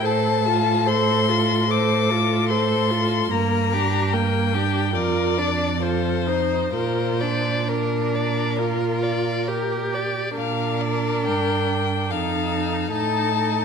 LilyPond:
<<
  \new Staff \with { instrumentName = "Violin" } { \time 4/4 \key bes \major \tempo 4 = 72 a''4 c'''4 d'''4 c'''4 | bes''4 g''4 d''4 c''4 | c''4 bes'2~ bes'8 r8 | f''8 d''8 g''4 f''4 a''4 | }
  \new Staff \with { instrumentName = "Violin" } { \time 4/4 \key bes \major c''8 a'8 c''8 a'8 c''8 a'8 c''8 a'8 | bes'8 g'8 bes'8 g'8 bes'8 d''8 a'8 c''8 | bes'8 d''8 bes'8 d''8 bes'8 d''8 bes'8 d''8 | bes'2 a'4 a'4 | }
  \new Staff \with { instrumentName = "Viola" } { \time 4/4 \key bes \major a'8 f'8 a'8 f'8 a'8 f'8 a'8 f'8 | bes8 d'8 bes8 d'8 f'8 d'8 f'8 ees'8 | f'8 d'8 d'4 f'4 g'4 | d'2 ees'4 ees'4 | }
  \new Staff \with { instrumentName = "Cello" } { \clef bass \time 4/4 \key bes \major a,1 | g,2 f,2 | bes,2.~ bes,8. r16 | bes,4 g,4 f,4 a,4 | }
>>